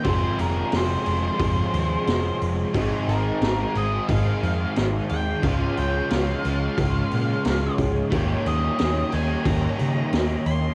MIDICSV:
0, 0, Header, 1, 7, 480
1, 0, Start_track
1, 0, Key_signature, -4, "major"
1, 0, Tempo, 671141
1, 39, Time_signature, 4, 2, 24, 8
1, 7681, End_track
2, 0, Start_track
2, 0, Title_t, "Lead electric guitar"
2, 0, Program_c, 0, 29
2, 29, Note_on_c, 0, 72, 87
2, 277, Note_on_c, 0, 70, 78
2, 282, Note_off_c, 0, 72, 0
2, 526, Note_off_c, 0, 70, 0
2, 540, Note_on_c, 0, 72, 75
2, 1705, Note_off_c, 0, 72, 0
2, 2213, Note_on_c, 0, 70, 75
2, 2698, Note_on_c, 0, 75, 86
2, 2704, Note_off_c, 0, 70, 0
2, 2916, Note_on_c, 0, 77, 97
2, 2939, Note_off_c, 0, 75, 0
2, 3373, Note_off_c, 0, 77, 0
2, 3647, Note_on_c, 0, 79, 105
2, 3885, Note_off_c, 0, 79, 0
2, 3888, Note_on_c, 0, 77, 91
2, 4133, Note_off_c, 0, 77, 0
2, 4136, Note_on_c, 0, 79, 99
2, 4363, Note_off_c, 0, 79, 0
2, 4365, Note_on_c, 0, 77, 81
2, 5536, Note_off_c, 0, 77, 0
2, 6061, Note_on_c, 0, 75, 79
2, 6530, Note_on_c, 0, 80, 82
2, 6545, Note_off_c, 0, 75, 0
2, 6770, Note_on_c, 0, 82, 97
2, 6773, Note_off_c, 0, 80, 0
2, 7215, Note_off_c, 0, 82, 0
2, 7486, Note_on_c, 0, 84, 96
2, 7681, Note_off_c, 0, 84, 0
2, 7681, End_track
3, 0, Start_track
3, 0, Title_t, "String machine"
3, 0, Program_c, 1, 50
3, 33, Note_on_c, 1, 84, 88
3, 37, Note_on_c, 1, 77, 68
3, 39, Note_on_c, 1, 68, 78
3, 43, Note_on_c, 1, 75, 73
3, 1944, Note_off_c, 1, 77, 0
3, 1945, Note_off_c, 1, 68, 0
3, 1953, Note_on_c, 1, 68, 81
3, 1953, Note_on_c, 1, 79, 71
3, 3860, Note_off_c, 1, 75, 0
3, 3861, Note_off_c, 1, 79, 0
3, 3880, Note_on_c, 1, 77, 74
3, 3887, Note_on_c, 1, 73, 74
3, 5770, Note_off_c, 1, 68, 0
3, 5773, Note_off_c, 1, 84, 0
3, 5782, Note_off_c, 1, 77, 0
3, 5827, Note_on_c, 1, 55, 77
3, 5829, Note_on_c, 1, 82, 93
3, 5831, Note_on_c, 1, 75, 71
3, 7681, Note_off_c, 1, 55, 0
3, 7681, Note_off_c, 1, 73, 0
3, 7681, Note_off_c, 1, 75, 0
3, 7681, Note_off_c, 1, 82, 0
3, 7681, End_track
4, 0, Start_track
4, 0, Title_t, "Overdriven electric guitar"
4, 0, Program_c, 2, 29
4, 54, Note_on_c, 2, 65, 91
4, 1958, Note_off_c, 2, 65, 0
4, 7681, End_track
5, 0, Start_track
5, 0, Title_t, "Overdriven electric guitar"
5, 0, Program_c, 3, 29
5, 27, Note_on_c, 3, 41, 90
5, 32, Note_on_c, 3, 48, 90
5, 40, Note_on_c, 3, 53, 85
5, 43, Note_on_c, 3, 56, 91
5, 48, Note_on_c, 3, 60, 91
5, 51, Note_on_c, 3, 68, 90
5, 741, Note_off_c, 3, 41, 0
5, 743, Note_off_c, 3, 48, 0
5, 744, Note_off_c, 3, 68, 0
5, 747, Note_off_c, 3, 53, 0
5, 747, Note_on_c, 3, 68, 80
5, 754, Note_off_c, 3, 60, 0
5, 757, Note_off_c, 3, 56, 0
5, 757, Note_on_c, 3, 60, 79
5, 760, Note_on_c, 3, 56, 85
5, 764, Note_on_c, 3, 53, 76
5, 768, Note_on_c, 3, 48, 72
5, 773, Note_on_c, 3, 41, 66
5, 1950, Note_off_c, 3, 41, 0
5, 1952, Note_off_c, 3, 53, 0
5, 1953, Note_on_c, 3, 44, 82
5, 1954, Note_off_c, 3, 48, 0
5, 1958, Note_on_c, 3, 51, 92
5, 1960, Note_off_c, 3, 56, 0
5, 1960, Note_on_c, 3, 56, 97
5, 1965, Note_off_c, 3, 60, 0
5, 1965, Note_on_c, 3, 60, 89
5, 1971, Note_off_c, 3, 68, 0
5, 1971, Note_on_c, 3, 63, 97
5, 1974, Note_on_c, 3, 68, 101
5, 2666, Note_off_c, 3, 44, 0
5, 2668, Note_off_c, 3, 51, 0
5, 2675, Note_off_c, 3, 63, 0
5, 2677, Note_off_c, 3, 68, 0
5, 2680, Note_on_c, 3, 68, 82
5, 2688, Note_on_c, 3, 63, 85
5, 2691, Note_off_c, 3, 60, 0
5, 2692, Note_off_c, 3, 56, 0
5, 2694, Note_on_c, 3, 60, 80
5, 2695, Note_on_c, 3, 56, 79
5, 2703, Note_on_c, 3, 51, 72
5, 2706, Note_on_c, 3, 44, 66
5, 3869, Note_off_c, 3, 68, 0
5, 3874, Note_off_c, 3, 63, 0
5, 3876, Note_off_c, 3, 51, 0
5, 3876, Note_off_c, 3, 60, 0
5, 3877, Note_off_c, 3, 56, 0
5, 3878, Note_on_c, 3, 49, 86
5, 3883, Note_off_c, 3, 44, 0
5, 3886, Note_on_c, 3, 53, 91
5, 3891, Note_on_c, 3, 56, 92
5, 3897, Note_on_c, 3, 61, 91
5, 3902, Note_on_c, 3, 65, 96
5, 4588, Note_off_c, 3, 49, 0
5, 4589, Note_off_c, 3, 65, 0
5, 4592, Note_off_c, 3, 53, 0
5, 4594, Note_off_c, 3, 56, 0
5, 4597, Note_on_c, 3, 65, 76
5, 4602, Note_off_c, 3, 61, 0
5, 4605, Note_on_c, 3, 61, 80
5, 4611, Note_on_c, 3, 56, 79
5, 4619, Note_on_c, 3, 53, 66
5, 4620, Note_on_c, 3, 49, 61
5, 5785, Note_off_c, 3, 65, 0
5, 5789, Note_off_c, 3, 61, 0
5, 5792, Note_off_c, 3, 53, 0
5, 5792, Note_off_c, 3, 56, 0
5, 5795, Note_on_c, 3, 51, 86
5, 5797, Note_off_c, 3, 49, 0
5, 5807, Note_on_c, 3, 58, 91
5, 5813, Note_on_c, 3, 61, 94
5, 5819, Note_on_c, 3, 67, 87
5, 6501, Note_off_c, 3, 67, 0
5, 6503, Note_off_c, 3, 51, 0
5, 6509, Note_off_c, 3, 58, 0
5, 6509, Note_on_c, 3, 67, 91
5, 6512, Note_off_c, 3, 61, 0
5, 6520, Note_on_c, 3, 61, 76
5, 6527, Note_on_c, 3, 58, 80
5, 6536, Note_on_c, 3, 51, 71
5, 7681, Note_off_c, 3, 51, 0
5, 7681, Note_off_c, 3, 58, 0
5, 7681, Note_off_c, 3, 61, 0
5, 7681, Note_off_c, 3, 67, 0
5, 7681, End_track
6, 0, Start_track
6, 0, Title_t, "Picked electric bass"
6, 0, Program_c, 4, 34
6, 38, Note_on_c, 4, 29, 83
6, 194, Note_off_c, 4, 29, 0
6, 282, Note_on_c, 4, 29, 83
6, 437, Note_off_c, 4, 29, 0
6, 525, Note_on_c, 4, 29, 86
6, 680, Note_off_c, 4, 29, 0
6, 766, Note_on_c, 4, 29, 84
6, 920, Note_off_c, 4, 29, 0
6, 999, Note_on_c, 4, 29, 90
6, 1156, Note_off_c, 4, 29, 0
6, 1242, Note_on_c, 4, 39, 89
6, 1398, Note_off_c, 4, 39, 0
6, 1484, Note_on_c, 4, 29, 84
6, 1640, Note_off_c, 4, 29, 0
6, 1730, Note_on_c, 4, 29, 86
6, 1884, Note_off_c, 4, 29, 0
6, 1963, Note_on_c, 4, 32, 90
6, 2119, Note_off_c, 4, 32, 0
6, 2202, Note_on_c, 4, 32, 84
6, 2359, Note_off_c, 4, 32, 0
6, 2442, Note_on_c, 4, 32, 88
6, 2599, Note_off_c, 4, 32, 0
6, 2687, Note_on_c, 4, 32, 85
6, 2843, Note_off_c, 4, 32, 0
6, 2927, Note_on_c, 4, 32, 89
6, 3082, Note_off_c, 4, 32, 0
6, 3169, Note_on_c, 4, 41, 85
6, 3324, Note_off_c, 4, 41, 0
6, 3413, Note_on_c, 4, 32, 85
6, 3567, Note_off_c, 4, 32, 0
6, 3655, Note_on_c, 4, 39, 84
6, 3808, Note_off_c, 4, 39, 0
6, 3886, Note_on_c, 4, 37, 89
6, 4041, Note_off_c, 4, 37, 0
6, 4135, Note_on_c, 4, 37, 83
6, 4288, Note_off_c, 4, 37, 0
6, 4373, Note_on_c, 4, 37, 85
6, 4526, Note_off_c, 4, 37, 0
6, 4615, Note_on_c, 4, 37, 87
6, 4767, Note_off_c, 4, 37, 0
6, 4851, Note_on_c, 4, 37, 86
6, 5005, Note_off_c, 4, 37, 0
6, 5097, Note_on_c, 4, 46, 84
6, 5248, Note_off_c, 4, 46, 0
6, 5334, Note_on_c, 4, 37, 81
6, 5487, Note_off_c, 4, 37, 0
6, 5563, Note_on_c, 4, 37, 80
6, 5719, Note_off_c, 4, 37, 0
6, 5804, Note_on_c, 4, 39, 86
6, 5959, Note_off_c, 4, 39, 0
6, 6054, Note_on_c, 4, 39, 81
6, 6206, Note_off_c, 4, 39, 0
6, 6302, Note_on_c, 4, 39, 91
6, 6451, Note_off_c, 4, 39, 0
6, 6532, Note_on_c, 4, 39, 86
6, 6684, Note_off_c, 4, 39, 0
6, 6762, Note_on_c, 4, 39, 85
6, 6917, Note_off_c, 4, 39, 0
6, 7014, Note_on_c, 4, 49, 84
6, 7164, Note_off_c, 4, 49, 0
6, 7245, Note_on_c, 4, 39, 85
6, 7398, Note_off_c, 4, 39, 0
6, 7482, Note_on_c, 4, 39, 87
6, 7635, Note_off_c, 4, 39, 0
6, 7681, End_track
7, 0, Start_track
7, 0, Title_t, "Drums"
7, 32, Note_on_c, 9, 46, 71
7, 35, Note_on_c, 9, 36, 101
7, 103, Note_off_c, 9, 46, 0
7, 106, Note_off_c, 9, 36, 0
7, 279, Note_on_c, 9, 46, 54
7, 351, Note_off_c, 9, 46, 0
7, 515, Note_on_c, 9, 46, 79
7, 522, Note_on_c, 9, 38, 107
7, 587, Note_off_c, 9, 46, 0
7, 594, Note_off_c, 9, 38, 0
7, 758, Note_on_c, 9, 46, 56
7, 830, Note_off_c, 9, 46, 0
7, 999, Note_on_c, 9, 36, 116
7, 999, Note_on_c, 9, 46, 79
7, 1070, Note_off_c, 9, 36, 0
7, 1071, Note_off_c, 9, 46, 0
7, 1242, Note_on_c, 9, 46, 58
7, 1313, Note_off_c, 9, 46, 0
7, 1482, Note_on_c, 9, 46, 72
7, 1489, Note_on_c, 9, 38, 104
7, 1553, Note_off_c, 9, 46, 0
7, 1561, Note_off_c, 9, 38, 0
7, 1726, Note_on_c, 9, 46, 55
7, 1798, Note_off_c, 9, 46, 0
7, 1962, Note_on_c, 9, 36, 99
7, 1969, Note_on_c, 9, 46, 67
7, 2034, Note_off_c, 9, 36, 0
7, 2040, Note_off_c, 9, 46, 0
7, 2208, Note_on_c, 9, 46, 50
7, 2280, Note_off_c, 9, 46, 0
7, 2444, Note_on_c, 9, 46, 72
7, 2451, Note_on_c, 9, 38, 107
7, 2515, Note_off_c, 9, 46, 0
7, 2523, Note_off_c, 9, 38, 0
7, 2685, Note_on_c, 9, 46, 49
7, 2756, Note_off_c, 9, 46, 0
7, 2924, Note_on_c, 9, 36, 114
7, 2925, Note_on_c, 9, 46, 76
7, 2996, Note_off_c, 9, 36, 0
7, 2997, Note_off_c, 9, 46, 0
7, 3170, Note_on_c, 9, 46, 52
7, 3241, Note_off_c, 9, 46, 0
7, 3405, Note_on_c, 9, 46, 72
7, 3413, Note_on_c, 9, 38, 103
7, 3477, Note_off_c, 9, 46, 0
7, 3484, Note_off_c, 9, 38, 0
7, 3643, Note_on_c, 9, 46, 55
7, 3715, Note_off_c, 9, 46, 0
7, 3883, Note_on_c, 9, 46, 75
7, 3886, Note_on_c, 9, 36, 100
7, 3954, Note_off_c, 9, 46, 0
7, 3957, Note_off_c, 9, 36, 0
7, 4128, Note_on_c, 9, 46, 53
7, 4200, Note_off_c, 9, 46, 0
7, 4366, Note_on_c, 9, 46, 77
7, 4373, Note_on_c, 9, 38, 103
7, 4437, Note_off_c, 9, 46, 0
7, 4444, Note_off_c, 9, 38, 0
7, 4612, Note_on_c, 9, 46, 59
7, 4683, Note_off_c, 9, 46, 0
7, 4847, Note_on_c, 9, 46, 77
7, 4849, Note_on_c, 9, 36, 118
7, 4919, Note_off_c, 9, 46, 0
7, 4920, Note_off_c, 9, 36, 0
7, 5088, Note_on_c, 9, 46, 57
7, 5159, Note_off_c, 9, 46, 0
7, 5327, Note_on_c, 9, 46, 76
7, 5334, Note_on_c, 9, 38, 106
7, 5398, Note_off_c, 9, 46, 0
7, 5405, Note_off_c, 9, 38, 0
7, 5566, Note_on_c, 9, 46, 57
7, 5567, Note_on_c, 9, 36, 77
7, 5637, Note_off_c, 9, 46, 0
7, 5638, Note_off_c, 9, 36, 0
7, 5807, Note_on_c, 9, 36, 110
7, 5808, Note_on_c, 9, 46, 69
7, 5879, Note_off_c, 9, 36, 0
7, 5879, Note_off_c, 9, 46, 0
7, 6051, Note_on_c, 9, 46, 52
7, 6122, Note_off_c, 9, 46, 0
7, 6283, Note_on_c, 9, 46, 70
7, 6290, Note_on_c, 9, 38, 114
7, 6354, Note_off_c, 9, 46, 0
7, 6362, Note_off_c, 9, 38, 0
7, 6523, Note_on_c, 9, 46, 51
7, 6594, Note_off_c, 9, 46, 0
7, 6761, Note_on_c, 9, 46, 73
7, 6762, Note_on_c, 9, 36, 108
7, 6832, Note_off_c, 9, 46, 0
7, 6834, Note_off_c, 9, 36, 0
7, 7003, Note_on_c, 9, 46, 52
7, 7075, Note_off_c, 9, 46, 0
7, 7242, Note_on_c, 9, 46, 71
7, 7249, Note_on_c, 9, 38, 113
7, 7313, Note_off_c, 9, 46, 0
7, 7320, Note_off_c, 9, 38, 0
7, 7480, Note_on_c, 9, 46, 54
7, 7552, Note_off_c, 9, 46, 0
7, 7681, End_track
0, 0, End_of_file